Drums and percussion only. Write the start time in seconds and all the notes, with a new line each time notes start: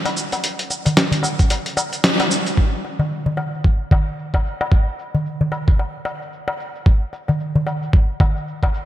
0.06 closed hi-hat, darbuka tek
0.17 shaker
0.32 closed hi-hat, darbuka ka, darbuka tek, shaker
0.44 closed hi-hat, shaker
0.59 closed hi-hat
0.70 darbuka ka, shaker
0.85 closed hi-hat, darbuka tek, darbuka dum, shaker
0.97 snare, closed hi-hat, shaker
1.12 closed hi-hat, darbuka dum
1.23 darbuka ka, darbuka tek, shaker
1.39 kick, closed hi-hat, shaker
1.50 closed hi-hat, darbuka ka, shaker
1.66 closed hi-hat
1.77 darbuka ka, darbuka tek, shaker
1.93 closed hi-hat, shaker
2.04 snare, closed hi-hat, shaker
2.20 closed hi-hat, darbuka tek
2.31 shaker
2.46 closed hi-hat, shaker
2.57 kick, shaker
2.85 darbuka ka, shaker
2.99 darbuka tek, darbuka dum, shaker
3.12 shaker
3.26 darbuka dum
3.37 darbuka ka, darbuka tek, shaker
3.54 shaker
3.64 kick
3.91 kick, darbuka tek, darbuka dum, shaker
4.08 shaker
4.19 shaker
4.34 kick, darbuka tek
4.46 shaker
4.61 darbuka ka, darbuka tek, shaker
4.72 kick, shaker
4.99 shaker
5.15 darbuka dum, shaker
5.26 shaker
5.41 darbuka dum
5.52 darbuka ka, darbuka tek, shaker
5.68 kick, shaker
5.79 darbuka ka, shaker
6.05 darbuka tek, shaker
6.22 shaker
6.33 shaker
6.48 darbuka tek
6.60 shaker
6.75 shaker
6.86 kick
7.13 darbuka ka, shaker
7.28 darbuka tek, darbuka dum, shaker
7.40 shaker
7.56 darbuka dum
7.67 darbuka ka, darbuka tek, shaker
7.83 shaker
7.93 kick
8.20 kick, darbuka tek, darbuka dum, shaker
8.37 shaker
8.48 shaker
8.63 kick, darbuka tek
8.74 shaker